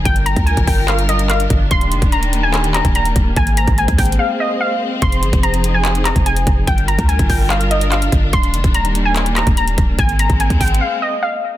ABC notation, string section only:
X:1
M:4/4
L:1/8
Q:1/4=145
K:Gphr
V:1 name="String section"
[G,DFB]8 | [E,G,B,]8 | [A,C]8 | [F,EA]8 |
[G,DFB]8 | [E,G,B,]8 | [A,C]8 |]